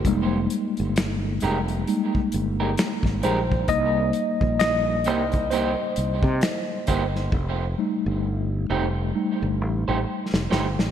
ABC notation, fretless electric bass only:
X:1
M:4/4
L:1/16
Q:"Swing 16ths" 1/4=66
K:Fm
V:1 name="Fretless electric bass" clef=bass
F,,,2 z G,,,3 F,,,2 z2 G,,,2 z A,,, B,,,2 | C,,2 z B,,,3 C,,3 z C,, C, z2 G,,,2 | F,,,2 z G,,,3 F,,,2 z G,,, =A,,, A,,, z F,,, G,,, A,,, |]